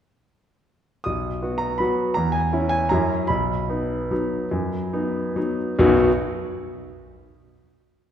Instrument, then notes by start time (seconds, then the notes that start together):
grand piano
1.04 B1 D#6
1.42 B3 F#4
1.58 A#5
1.78 F#3 B3 F#4 B5
2.14 E2 A#5
2.32 G#5
2.53 C#4 E4
2.69 G#5
2.89 F#2 F#3 C#4 E4 A#5
3.27 B1 B5
3.69 B3 D#4
4.11 F#3 B3 D#4
4.51 F#2
4.93 B3 D#4
5.36 F#3 B3 D#4
5.79 B1 F#2 F#3 B3 D#4 F#4